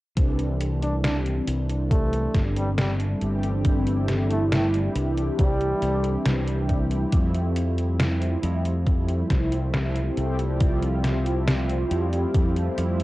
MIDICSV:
0, 0, Header, 1, 5, 480
1, 0, Start_track
1, 0, Key_signature, 0, "major"
1, 0, Tempo, 869565
1, 95, Time_signature, 4, 2, 24, 8
1, 7195, End_track
2, 0, Start_track
2, 0, Title_t, "Analog polysynth"
2, 0, Program_c, 0, 90
2, 86, Note_on_c, 0, 52, 83
2, 90, Note_on_c, 0, 55, 75
2, 94, Note_on_c, 0, 57, 76
2, 99, Note_on_c, 0, 60, 76
2, 103, Note_on_c, 0, 62, 91
2, 197, Control_c, 0, 64, 127
2, 1742, Note_off_c, 0, 52, 0
2, 1744, Note_off_c, 0, 55, 0
2, 1746, Note_off_c, 0, 57, 0
2, 1748, Note_off_c, 0, 60, 0
2, 1750, Note_off_c, 0, 62, 0
2, 1770, Note_on_c, 0, 52, 93
2, 1772, Note_on_c, 0, 55, 85
2, 1774, Note_on_c, 0, 57, 83
2, 1776, Note_on_c, 0, 60, 85
2, 1778, Note_on_c, 0, 67, 104
2, 1984, Note_off_c, 0, 52, 0
2, 1985, Note_off_c, 0, 55, 0
2, 1986, Note_off_c, 0, 57, 0
2, 1987, Note_off_c, 0, 60, 0
2, 1988, Note_off_c, 0, 67, 0
2, 2006, Note_on_c, 0, 52, 91
2, 2010, Note_on_c, 0, 55, 84
2, 2014, Note_on_c, 0, 57, 83
2, 2019, Note_on_c, 0, 60, 83
2, 2022, Note_on_c, 0, 64, 100
2, 3182, Note_off_c, 0, 52, 0
2, 3184, Note_off_c, 0, 55, 0
2, 3186, Note_off_c, 0, 57, 0
2, 3188, Note_off_c, 0, 60, 0
2, 3190, Note_off_c, 0, 64, 0
2, 3207, Note_on_c, 0, 52, 76
2, 3211, Note_on_c, 0, 55, 71
2, 3215, Note_on_c, 0, 57, 71
2, 3219, Note_on_c, 0, 60, 72
2, 3223, Note_on_c, 0, 62, 86
2, 3902, Note_off_c, 0, 52, 0
2, 3905, Note_off_c, 0, 55, 0
2, 3907, Note_off_c, 0, 57, 0
2, 3908, Note_off_c, 0, 60, 0
2, 3910, Note_off_c, 0, 62, 0
2, 3927, Note_on_c, 0, 53, 84
2, 3932, Note_on_c, 0, 55, 75
2, 3935, Note_on_c, 0, 57, 77
2, 3940, Note_on_c, 0, 60, 75
2, 3942, Control_c, 0, 64, 0
2, 3944, Note_on_c, 0, 64, 91
2, 4036, Control_c, 0, 64, 127
2, 5583, Note_off_c, 0, 53, 0
2, 5585, Note_off_c, 0, 55, 0
2, 5587, Note_off_c, 0, 57, 0
2, 5589, Note_off_c, 0, 60, 0
2, 5591, Note_off_c, 0, 64, 0
2, 5612, Note_on_c, 0, 53, 95
2, 5614, Note_on_c, 0, 55, 84
2, 5616, Note_on_c, 0, 57, 85
2, 5618, Note_on_c, 0, 60, 86
2, 5620, Note_on_c, 0, 67, 105
2, 5825, Note_off_c, 0, 53, 0
2, 5826, Note_off_c, 0, 55, 0
2, 5827, Note_off_c, 0, 57, 0
2, 5828, Note_off_c, 0, 60, 0
2, 5829, Note_off_c, 0, 67, 0
2, 5848, Note_on_c, 0, 53, 92
2, 5852, Note_on_c, 0, 55, 82
2, 5856, Note_on_c, 0, 57, 84
2, 5860, Note_on_c, 0, 60, 84
2, 5865, Note_on_c, 0, 65, 100
2, 7023, Note_off_c, 0, 53, 0
2, 7025, Note_off_c, 0, 55, 0
2, 7027, Note_off_c, 0, 57, 0
2, 7029, Note_off_c, 0, 60, 0
2, 7031, Note_off_c, 0, 65, 0
2, 7047, Note_on_c, 0, 53, 79
2, 7051, Note_on_c, 0, 55, 72
2, 7055, Note_on_c, 0, 57, 72
2, 7060, Note_on_c, 0, 60, 70
2, 7063, Note_on_c, 0, 64, 88
2, 7195, Note_off_c, 0, 53, 0
2, 7195, Note_off_c, 0, 55, 0
2, 7195, Note_off_c, 0, 57, 0
2, 7195, Note_off_c, 0, 60, 0
2, 7195, Note_off_c, 0, 64, 0
2, 7195, End_track
3, 0, Start_track
3, 0, Title_t, "Flugelhorn"
3, 0, Program_c, 1, 56
3, 454, Note_on_c, 1, 62, 83
3, 531, Note_off_c, 1, 62, 0
3, 573, Note_on_c, 1, 62, 73
3, 652, Note_off_c, 1, 62, 0
3, 1054, Note_on_c, 1, 57, 91
3, 1343, Note_off_c, 1, 57, 0
3, 1415, Note_on_c, 1, 55, 87
3, 1492, Note_off_c, 1, 55, 0
3, 1534, Note_on_c, 1, 55, 73
3, 1612, Note_off_c, 1, 55, 0
3, 2375, Note_on_c, 1, 57, 87
3, 2452, Note_off_c, 1, 57, 0
3, 2494, Note_on_c, 1, 57, 73
3, 2572, Note_off_c, 1, 57, 0
3, 2976, Note_on_c, 1, 55, 95
3, 3456, Note_off_c, 1, 55, 0
3, 7195, End_track
4, 0, Start_track
4, 0, Title_t, "Fingered electric bass"
4, 0, Program_c, 2, 33
4, 94, Note_on_c, 2, 36, 93
4, 769, Note_off_c, 2, 36, 0
4, 814, Note_on_c, 2, 36, 92
4, 1249, Note_off_c, 2, 36, 0
4, 1294, Note_on_c, 2, 31, 88
4, 1729, Note_off_c, 2, 31, 0
4, 1775, Note_on_c, 2, 31, 97
4, 2689, Note_off_c, 2, 31, 0
4, 2734, Note_on_c, 2, 36, 92
4, 2917, Note_off_c, 2, 36, 0
4, 2975, Note_on_c, 2, 36, 94
4, 3158, Note_off_c, 2, 36, 0
4, 3214, Note_on_c, 2, 36, 93
4, 3397, Note_off_c, 2, 36, 0
4, 3453, Note_on_c, 2, 36, 84
4, 3888, Note_off_c, 2, 36, 0
4, 3936, Note_on_c, 2, 41, 93
4, 4609, Note_off_c, 2, 41, 0
4, 4655, Note_on_c, 2, 41, 92
4, 5089, Note_off_c, 2, 41, 0
4, 5135, Note_on_c, 2, 36, 85
4, 5569, Note_off_c, 2, 36, 0
4, 5615, Note_on_c, 2, 36, 96
4, 6529, Note_off_c, 2, 36, 0
4, 6574, Note_on_c, 2, 41, 90
4, 6757, Note_off_c, 2, 41, 0
4, 6814, Note_on_c, 2, 41, 93
4, 6997, Note_off_c, 2, 41, 0
4, 7053, Note_on_c, 2, 41, 91
4, 7195, Note_off_c, 2, 41, 0
4, 7195, End_track
5, 0, Start_track
5, 0, Title_t, "Drums"
5, 93, Note_on_c, 9, 42, 91
5, 94, Note_on_c, 9, 36, 111
5, 148, Note_off_c, 9, 42, 0
5, 149, Note_off_c, 9, 36, 0
5, 215, Note_on_c, 9, 42, 40
5, 270, Note_off_c, 9, 42, 0
5, 335, Note_on_c, 9, 42, 64
5, 390, Note_off_c, 9, 42, 0
5, 455, Note_on_c, 9, 42, 38
5, 511, Note_off_c, 9, 42, 0
5, 575, Note_on_c, 9, 38, 109
5, 575, Note_on_c, 9, 42, 89
5, 630, Note_off_c, 9, 38, 0
5, 630, Note_off_c, 9, 42, 0
5, 696, Note_on_c, 9, 42, 41
5, 751, Note_off_c, 9, 42, 0
5, 814, Note_on_c, 9, 42, 65
5, 869, Note_off_c, 9, 42, 0
5, 935, Note_on_c, 9, 42, 39
5, 990, Note_off_c, 9, 42, 0
5, 1054, Note_on_c, 9, 36, 116
5, 1054, Note_on_c, 9, 42, 90
5, 1109, Note_off_c, 9, 36, 0
5, 1109, Note_off_c, 9, 42, 0
5, 1176, Note_on_c, 9, 42, 38
5, 1231, Note_off_c, 9, 42, 0
5, 1294, Note_on_c, 9, 36, 60
5, 1295, Note_on_c, 9, 38, 59
5, 1295, Note_on_c, 9, 42, 63
5, 1350, Note_off_c, 9, 36, 0
5, 1350, Note_off_c, 9, 38, 0
5, 1350, Note_off_c, 9, 42, 0
5, 1416, Note_on_c, 9, 42, 41
5, 1471, Note_off_c, 9, 42, 0
5, 1534, Note_on_c, 9, 38, 118
5, 1534, Note_on_c, 9, 42, 94
5, 1589, Note_off_c, 9, 38, 0
5, 1589, Note_off_c, 9, 42, 0
5, 1655, Note_on_c, 9, 42, 39
5, 1710, Note_off_c, 9, 42, 0
5, 1774, Note_on_c, 9, 42, 40
5, 1829, Note_off_c, 9, 42, 0
5, 1894, Note_on_c, 9, 42, 36
5, 1949, Note_off_c, 9, 42, 0
5, 2013, Note_on_c, 9, 42, 93
5, 2014, Note_on_c, 9, 36, 116
5, 2068, Note_off_c, 9, 42, 0
5, 2070, Note_off_c, 9, 36, 0
5, 2135, Note_on_c, 9, 42, 40
5, 2190, Note_off_c, 9, 42, 0
5, 2253, Note_on_c, 9, 38, 58
5, 2253, Note_on_c, 9, 42, 64
5, 2309, Note_off_c, 9, 38, 0
5, 2309, Note_off_c, 9, 42, 0
5, 2376, Note_on_c, 9, 42, 40
5, 2431, Note_off_c, 9, 42, 0
5, 2495, Note_on_c, 9, 38, 118
5, 2495, Note_on_c, 9, 42, 95
5, 2550, Note_off_c, 9, 38, 0
5, 2550, Note_off_c, 9, 42, 0
5, 2615, Note_on_c, 9, 42, 40
5, 2671, Note_off_c, 9, 42, 0
5, 2734, Note_on_c, 9, 42, 65
5, 2790, Note_off_c, 9, 42, 0
5, 2856, Note_on_c, 9, 42, 40
5, 2911, Note_off_c, 9, 42, 0
5, 2974, Note_on_c, 9, 42, 93
5, 2975, Note_on_c, 9, 36, 118
5, 3029, Note_off_c, 9, 42, 0
5, 3030, Note_off_c, 9, 36, 0
5, 3096, Note_on_c, 9, 42, 38
5, 3151, Note_off_c, 9, 42, 0
5, 3214, Note_on_c, 9, 42, 63
5, 3269, Note_off_c, 9, 42, 0
5, 3335, Note_on_c, 9, 42, 40
5, 3390, Note_off_c, 9, 42, 0
5, 3454, Note_on_c, 9, 38, 117
5, 3454, Note_on_c, 9, 42, 93
5, 3509, Note_off_c, 9, 38, 0
5, 3509, Note_off_c, 9, 42, 0
5, 3575, Note_on_c, 9, 42, 40
5, 3630, Note_off_c, 9, 42, 0
5, 3694, Note_on_c, 9, 42, 40
5, 3695, Note_on_c, 9, 36, 61
5, 3750, Note_off_c, 9, 36, 0
5, 3750, Note_off_c, 9, 42, 0
5, 3815, Note_on_c, 9, 42, 37
5, 3870, Note_off_c, 9, 42, 0
5, 3934, Note_on_c, 9, 42, 95
5, 3935, Note_on_c, 9, 36, 116
5, 3989, Note_off_c, 9, 42, 0
5, 3991, Note_off_c, 9, 36, 0
5, 4056, Note_on_c, 9, 42, 38
5, 4111, Note_off_c, 9, 42, 0
5, 4175, Note_on_c, 9, 42, 64
5, 4230, Note_off_c, 9, 42, 0
5, 4295, Note_on_c, 9, 42, 40
5, 4350, Note_off_c, 9, 42, 0
5, 4414, Note_on_c, 9, 38, 121
5, 4414, Note_on_c, 9, 42, 92
5, 4469, Note_off_c, 9, 38, 0
5, 4469, Note_off_c, 9, 42, 0
5, 4535, Note_on_c, 9, 42, 40
5, 4591, Note_off_c, 9, 42, 0
5, 4654, Note_on_c, 9, 42, 65
5, 4710, Note_off_c, 9, 42, 0
5, 4776, Note_on_c, 9, 42, 40
5, 4831, Note_off_c, 9, 42, 0
5, 4894, Note_on_c, 9, 42, 94
5, 4895, Note_on_c, 9, 36, 125
5, 4949, Note_off_c, 9, 42, 0
5, 4950, Note_off_c, 9, 36, 0
5, 5015, Note_on_c, 9, 42, 39
5, 5070, Note_off_c, 9, 42, 0
5, 5134, Note_on_c, 9, 38, 60
5, 5134, Note_on_c, 9, 42, 63
5, 5135, Note_on_c, 9, 36, 62
5, 5190, Note_off_c, 9, 36, 0
5, 5190, Note_off_c, 9, 38, 0
5, 5190, Note_off_c, 9, 42, 0
5, 5255, Note_on_c, 9, 42, 41
5, 5310, Note_off_c, 9, 42, 0
5, 5374, Note_on_c, 9, 38, 124
5, 5374, Note_on_c, 9, 42, 93
5, 5429, Note_off_c, 9, 38, 0
5, 5429, Note_off_c, 9, 42, 0
5, 5495, Note_on_c, 9, 42, 39
5, 5550, Note_off_c, 9, 42, 0
5, 5614, Note_on_c, 9, 42, 39
5, 5669, Note_off_c, 9, 42, 0
5, 5735, Note_on_c, 9, 42, 38
5, 5790, Note_off_c, 9, 42, 0
5, 5853, Note_on_c, 9, 42, 90
5, 5855, Note_on_c, 9, 36, 120
5, 5908, Note_off_c, 9, 42, 0
5, 5910, Note_off_c, 9, 36, 0
5, 5975, Note_on_c, 9, 42, 39
5, 6030, Note_off_c, 9, 42, 0
5, 6093, Note_on_c, 9, 38, 59
5, 6093, Note_on_c, 9, 42, 61
5, 6149, Note_off_c, 9, 38, 0
5, 6149, Note_off_c, 9, 42, 0
5, 6215, Note_on_c, 9, 42, 37
5, 6270, Note_off_c, 9, 42, 0
5, 6334, Note_on_c, 9, 38, 119
5, 6334, Note_on_c, 9, 42, 91
5, 6389, Note_off_c, 9, 38, 0
5, 6389, Note_off_c, 9, 42, 0
5, 6455, Note_on_c, 9, 42, 38
5, 6510, Note_off_c, 9, 42, 0
5, 6574, Note_on_c, 9, 42, 63
5, 6630, Note_off_c, 9, 42, 0
5, 6695, Note_on_c, 9, 42, 38
5, 6750, Note_off_c, 9, 42, 0
5, 6814, Note_on_c, 9, 42, 86
5, 6815, Note_on_c, 9, 36, 119
5, 6870, Note_off_c, 9, 36, 0
5, 6870, Note_off_c, 9, 42, 0
5, 6935, Note_on_c, 9, 42, 37
5, 6990, Note_off_c, 9, 42, 0
5, 7054, Note_on_c, 9, 42, 62
5, 7109, Note_off_c, 9, 42, 0
5, 7175, Note_on_c, 9, 42, 39
5, 7195, Note_off_c, 9, 42, 0
5, 7195, End_track
0, 0, End_of_file